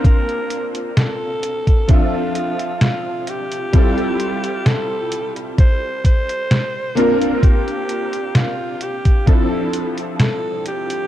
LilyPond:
<<
  \new Staff \with { instrumentName = "Alto saxophone" } { \time 4/4 \key bes \lydian \tempo 4 = 65 bes'8 r8 a'4 f'4 f'8 g'8~ | g'4 a'8 r8 c''8 c''4 bes'8 | g'4 f'8 g'8 a'8 r8 a'8 g'8 | }
  \new Staff \with { instrumentName = "Electric grand piano" } { \time 4/4 \key bes \lydian <bes c' d' f'>2 <f c' d' a' e''>2 | <g c' e' f' a'>2.~ <g c' e' f' a'>8 <bes c' d' f' bes'>8~ | <bes c' d' f' bes'>2 <f c' d' e' a'>2 | }
  \new DrumStaff \with { instrumentName = "Drums" } \drummode { \time 4/4 <hh bd>16 hh16 hh16 hh16 <hh sn>8 hh16 <hh bd>16 <hh bd>8 hh16 hh16 <hh sn>8 hh16 hh16 | <hh bd>16 hh16 hh16 hh16 <hh sn>8 hh16 hh16 <hh bd>8 <hh bd>16 hh16 <hh sn>8 hh16 hh16 | <hh bd>16 hh16 hh16 hh16 <hh sn>8 hh16 <hh bd>16 <hh bd>8 hh16 hh16 <hh sn>8 hh16 hh16 | }
>>